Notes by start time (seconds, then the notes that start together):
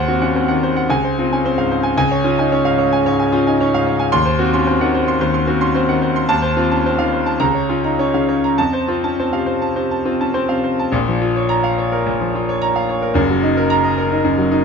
Already playing: D#2 C5 F#5
0.08 C4 F#4
0.22 C#4 F#5
0.36 C4 C5
0.48 D#3 F#5
0.63 C5
0.76 F#5
0.90 C#2 G#5
1.04 C5
1.19 C4 F4
1.33 C#4 G#5
1.45 C4 C5
1.58 G#2 F5
1.71 C5
1.83 G#5
1.97 C#2 G#5
2.11 C#5
2.24 C#4 F4
2.39 D#4 G#5
2.52 C#4 C#5
2.65 G#2 F5
2.78 C#5
2.93 G#5
3.06 G#2 C#5
3.19 G#5
3.32 C#4 F4
3.47 D#4 G#5
3.60 C#4 C#5
3.74 G#2 F5
3.87 C#5
3.99 G#5
4.12 D#2 C6
4.26 C5
4.39 C4 F#4
4.53 C#4 C6
4.67 C4 C5
4.81 D#3 F#5
4.94 C5
5.08 C6
5.21 D#2 C5
5.34 C6
5.47 C4 F#4
5.61 C#4 C6
5.75 C4 C5
5.88 D#3 F#5
6.02 C5
6.16 C6
6.29 D#2 A5
6.42 C5
6.57 C4 F4
6.71 C#4 A5
6.86 C4 C5
6.99 D#3 F5
7.12 C5
7.26 A5
7.40 C#2 A#5
7.54 C#5
7.69 C#4 F4
7.84 D#4 A#5
7.99 C#4 C#5
8.14 C#3 F5
8.29 C#5
8.44 A#5
8.58 F2 A5
8.73 C5
8.88 C4 F4
9.04 C#4 A5
9.20 C4 C5
9.33 C3 F5
9.46 C5
9.62 A5
9.76 C3 C5
9.91 A5
10.05 C4 F4
10.20 C#4 A5
10.34 C4 C5
10.49 C3 F5
10.64 C5
10.79 A5
10.92 A#1 A#2
11.08 F3
11.22 F4
11.36 C#5
11.49 A#5
11.64 F5
11.78 C#5
11.92 A#4
12.07 A#2
12.21 F3
12.35 F4
12.49 C#5
12.62 A#5
12.76 F5
12.89 C#5
13.02 A#4
13.14 F#1 F#2
13.29 F#3
13.43 D#4
13.57 A#4
13.70 A#5
13.84 D#5
13.98 A#4
14.11 D#4
14.24 F#2
14.38 F#3
14.52 D#4